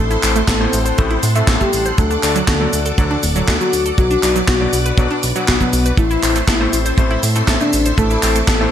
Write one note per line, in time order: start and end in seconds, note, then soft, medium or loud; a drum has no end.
0.00 0.17 A1 loud
0.00 0.20 A2 medium
0.00 0.20 C4 medium
0.00 0.20 E4 medium
0.00 0.20 A4 medium
0.00 0.39 A4 loud
0.00 3.94 A4 medium
0.00 1.94 C5 medium
0.00 0.20 E5 medium
0.00 5.94 F#5 medium
0.00 1.94 C6 medium
0.11 0.23 E4 medium
0.11 closed hi-hat soft
0.11 cabasa soft
0.23 0.42 A1 medium
0.23 0.37 A2 medium
0.23 0.37 C4 medium
0.23 0.37 E4 medium
0.23 0.37 A4 medium
0.23 0.38 C5 loud
0.23 clap medium
0.23 open hi-hat medium
0.23 cabasa medium
0.36 0.45 A3 loud
0.36 closed hi-hat medium
0.36 cabasa soft
0.48 0.67 A1 loud
0.48 0.60 A4 medium
0.48 0.79 A4 loud
0.48 kick loud
0.48 snare loud
0.48 clap medium
0.48 closed hi-hat medium
0.48 cabasa soft
0.60 0.95 A2 medium
0.60 0.69 A3 medium
0.60 0.95 C4 medium
0.60 0.95 E4 medium
0.60 0.95 A4 medium
0.60 0.95 C5 loud
0.73 0.92 A1 medium
0.73 open hi-hat loud
0.73 cabasa medium
0.85 0.97 C5 medium
0.85 closed hi-hat medium
0.85 cabasa soft
0.98 1.18 A1 medium
0.98 1.20 A2 medium
0.98 1.07 A3 medium
0.98 1.20 C4 medium
0.98 1.20 E4 medium
0.98 1.20 A4 medium
0.98 1.20 C5 loud
0.98 kick loud
0.98 closed hi-hat medium
0.98 cabasa soft
1.11 1.22 E4 medium
1.11 closed hi-hat soft
1.23 1.42 A2 loud
1.23 open hi-hat loud
1.23 cabasa medium
1.36 1.46 A2 medium
1.36 1.44 A3 loud
1.36 1.46 C4 medium
1.36 1.46 E4 medium
1.36 1.46 A4 medium
1.36 1.46 E5 medium
1.36 closed hi-hat medium
1.36 cabasa soft
1.48 1.57 A1 loud
1.48 1.97 A2 medium
1.48 1.97 C4 medium
1.48 1.97 E4 medium
1.48 1.60 A4 medium
1.48 1.97 A4 medium
1.48 1.97 E5 medium
1.48 kick loud
1.48 snare loud
1.48 clap medium
1.48 closed hi-hat medium
1.48 cabasa soft
1.61 1.69 A3 medium
1.61 1.91 G4 loud
1.61 kick medium
1.61 closed hi-hat soft
1.61 cabasa soft
1.73 1.92 A1 medium
1.73 open hi-hat loud
1.73 cabasa medium
1.86 1.98 C5 medium
1.86 closed hi-hat medium
1.86 cabasa soft
1.98 2.17 D2 loud
1.98 2.07 F#3 medium
1.98 2.39 A4 loud
1.98 5.94 D5 medium
1.98 5.94 D6 medium
1.98 kick loud
1.98 closed hi-hat medium
1.98 cabasa soft
2.11 2.22 D4 medium
2.11 closed hi-hat soft
2.11 cabasa soft
2.23 2.42 D2 medium
2.23 2.37 D3 medium
2.23 2.37 D4 medium
2.23 2.37 F#4 medium
2.23 2.37 A4 medium
2.23 2.37 D5 loud
2.23 clap medium
2.23 open hi-hat loud
2.23 cabasa medium
2.36 2.45 F#3 loud
2.36 closed hi-hat soft
2.36 cabasa soft
2.48 2.67 D2 loud
2.48 2.60 F#4 medium
2.48 2.79 A4 loud
2.48 kick loud
2.48 snare loud
2.48 clap medium
2.48 closed hi-hat medium
2.48 cabasa soft
2.61 2.95 D3 medium
2.61 2.70 F#3 medium
2.61 2.95 D4 medium
2.61 2.95 F#4 medium
2.61 2.95 A4 medium
2.61 2.95 D5 loud
2.73 2.92 D2 medium
2.73 open hi-hat loud
2.73 cabasa medium
2.86 2.97 A4 medium
2.86 closed hi-hat medium
2.86 cabasa soft
2.98 3.17 D2 medium
2.98 3.20 D3 medium
2.98 3.07 F#3 medium
2.98 3.20 D4 medium
2.98 3.20 F#4 medium
2.98 3.20 A4 medium
2.98 3.20 D5 loud
2.98 kick loud
2.98 closed hi-hat medium
2.98 cabasa soft
3.11 3.23 D4 medium
3.11 closed hi-hat soft
3.23 3.42 D1 loud
3.23 open hi-hat loud
3.23 cabasa medium
3.36 3.46 D3 medium
3.36 3.45 F#3 loud
3.36 3.46 D4 medium
3.36 3.46 F#4 medium
3.36 3.46 A4 medium
3.36 3.46 F#5 medium
3.36 closed hi-hat soft
3.36 cabasa soft
3.48 3.58 D2 loud
3.48 3.97 D3 medium
3.48 3.97 D4 medium
3.48 3.60 F#4 medium
3.48 3.97 F#4 medium
3.48 3.97 A4 medium
3.48 3.97 F#5 medium
3.48 kick loud
3.48 snare loud
3.48 clap medium
3.48 closed hi-hat medium
3.48 cabasa soft
3.60 3.70 F#3 medium
3.60 3.91 F#4 loud
3.60 closed hi-hat soft
3.60 cabasa soft
3.73 3.92 D2 medium
3.73 open hi-hat loud
3.73 cabasa medium
3.86 3.97 A4 medium
3.86 closed hi-hat medium
3.86 cabasa soft
3.98 4.17 B1 loud
3.98 4.07 F#3 medium
3.98 4.39 F#4 loud
3.98 5.96 B4 medium
3.98 kick loud
3.98 closed hi-hat medium
3.98 cabasa soft
4.11 4.22 D4 medium
4.11 closed hi-hat soft
4.11 cabasa soft
4.23 4.42 B1 medium
4.23 4.37 B2 medium
4.23 4.37 D4 medium
4.23 4.37 F#4 medium
4.23 4.37 B4 medium
4.23 4.37 D5 loud
4.23 clap medium
4.23 open hi-hat loud
4.23 cabasa medium
4.36 4.45 F#3 loud
4.36 closed hi-hat medium
4.36 cabasa soft
4.48 4.67 B1 loud
4.48 4.79 F#4 loud
4.48 4.60 F#4 medium
4.48 kick loud
4.48 snare loud
4.48 clap medium
4.48 closed hi-hat medium
4.48 cabasa soft
4.61 4.95 B2 medium
4.61 4.70 F#3 medium
4.61 4.95 D4 medium
4.61 4.95 F#4 medium
4.61 4.95 B4 medium
4.61 4.95 D5 loud
4.73 4.92 B1 medium
4.73 open hi-hat loud
4.73 cabasa medium
4.86 4.98 B4 medium
4.86 closed hi-hat medium
4.86 cabasa soft
4.98 5.07 B1 loud
4.98 5.20 B2 medium
4.98 5.07 F#3 medium
4.98 5.20 D4 medium
4.98 5.20 F#4 medium
4.98 5.20 B4 medium
4.98 5.20 D5 loud
4.98 kick loud
4.98 closed hi-hat medium
4.98 cabasa soft
5.11 5.23 D4 medium
5.11 closed hi-hat soft
5.23 5.33 B1 medium
5.23 open hi-hat loud
5.23 cabasa medium
5.36 5.46 B2 medium
5.36 5.44 F#3 loud
5.36 5.46 D4 medium
5.36 5.46 F#4 medium
5.36 5.46 B4 medium
5.36 5.46 F#5 medium
5.36 closed hi-hat medium
5.36 cabasa soft
5.48 5.58 B1 loud
5.48 5.97 B2 medium
5.48 5.97 D4 medium
5.48 5.60 F#4 medium
5.48 5.97 F#4 medium
5.48 5.97 B4 medium
5.48 5.97 F#5 medium
5.48 kick loud
5.48 snare loud
5.48 clap medium
5.48 closed hi-hat medium
5.48 cabasa soft
5.60 5.70 F#3 medium
5.60 5.91 B3 loud
5.60 kick medium
5.60 closed hi-hat soft
5.60 cabasa soft
5.73 5.92 B1 loud
5.73 open hi-hat loud
5.73 cabasa medium
5.86 5.97 B4 medium
5.86 closed hi-hat medium
5.86 cabasa soft
5.97 6.17 A1 loud
5.97 6.07 A3 medium
5.97 6.39 E4 loud
5.97 8.71 A4 medium
5.97 8.71 C5 medium
5.97 8.71 E5 medium
5.97 7.96 C6 medium
5.97 kick loud
5.97 closed hi-hat medium
5.97 cabasa soft
6.11 6.23 E4 medium
6.11 closed hi-hat soft
6.11 cabasa soft
6.23 6.42 A1 medium
6.23 6.37 A2 medium
6.23 6.37 C4 medium
6.23 6.37 E4 medium
6.23 6.37 A4 medium
6.23 6.37 C5 loud
6.23 clap medium
6.23 open hi-hat loud
6.23 cabasa medium
6.36 6.44 A3 loud
6.36 closed hi-hat medium
6.36 cabasa soft
6.48 6.67 A1 loud
6.48 6.79 E4 loud
6.48 6.60 A4 medium
6.48 kick loud
6.48 snare loud
6.48 clap medium
6.48 closed hi-hat medium
6.48 cabasa soft
6.61 6.95 A2 medium
6.61 6.70 A3 medium
6.61 6.95 C4 medium
6.61 6.95 E4 medium
6.61 6.95 A4 medium
6.61 6.95 C5 loud
6.73 6.92 A1 medium
6.73 open hi-hat loud
6.73 cabasa medium
6.86 6.98 C5 medium
6.86 closed hi-hat medium
6.86 cabasa soft
6.98 7.17 A1 loud
6.98 7.20 A2 medium
6.98 7.07 A3 medium
6.98 7.20 C4 medium
6.98 7.20 E4 medium
6.98 7.20 A4 medium
6.98 7.20 C5 loud
6.98 kick loud
6.98 closed hi-hat medium
6.98 cabasa soft
7.11 7.22 E4 medium
7.11 closed hi-hat soft
7.23 7.42 A2 loud
7.23 open hi-hat loud
7.23 cabasa medium
7.35 7.46 A2 medium
7.35 7.45 A3 loud
7.35 7.46 C4 medium
7.35 7.46 E4 medium
7.35 7.46 A4 medium
7.35 7.46 E5 medium
7.35 closed hi-hat soft
7.35 cabasa soft
7.48 7.58 A1 loud
7.48 8.20 A2 medium
7.48 8.20 C4 medium
7.48 8.20 E4 medium
7.48 8.20 A4 medium
7.48 7.60 A4 medium
7.48 8.20 E5 medium
7.48 kick loud
7.48 snare loud
7.48 clap medium
7.48 closed hi-hat medium
7.48 cabasa soft
7.60 7.70 A3 medium
7.60 7.91 D4 loud
7.60 closed hi-hat soft
7.60 cabasa soft
7.73 7.92 A1 medium
7.73 open hi-hat loud
7.73 cabasa medium
7.86 7.98 C5 medium
7.86 closed hi-hat medium
7.86 cabasa soft
7.98 8.17 A1 loud
7.98 8.07 A3 medium
7.98 8.39 A4 loud
7.98 8.71 D6 medium
7.98 kick loud
7.98 closed hi-hat medium
7.98 cabasa soft
8.11 8.22 E4 medium
8.11 closed hi-hat soft
8.11 cabasa soft
8.23 8.42 A1 medium
8.23 8.37 A2 medium
8.23 8.37 C4 medium
8.23 8.37 E4 medium
8.23 8.37 A4 medium
8.23 8.37 C5 loud
8.23 clap medium
8.23 open hi-hat loud
8.23 cabasa medium
8.36 8.44 A3 loud
8.36 closed hi-hat medium
8.36 cabasa soft
8.48 8.67 A1 loud
8.48 8.60 A4 medium
8.48 8.71 A4 loud
8.48 kick loud
8.48 snare loud
8.48 clap medium
8.48 closed hi-hat medium
8.48 cabasa soft
8.61 8.71 A2 loud
8.61 8.69 A3 medium
8.61 8.71 C4 medium
8.61 8.71 E4 medium
8.61 8.71 A4 medium
8.61 8.71 C5 loud